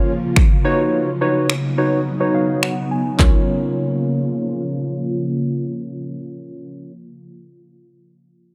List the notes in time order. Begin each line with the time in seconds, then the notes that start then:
Already playing: C#3 F3 A#3 C#4 F4 A#4 C#5
0.36 finger snap, kick
0.65 C#3 F#3 B3 D#4 F#4 B4 C#5
1.21 D#4 F#4 B4 C#5
1.50 finger snap
1.78 D#4 F#4 B4 C#5
2.20 D#4 F#4 B4 C#5
2.35 F5
2.63 F#5, finger snap
2.91 G#5
3.17 C#3 F3 A#3 C#4 F4 A#4 C#5, kick, clap, floor tom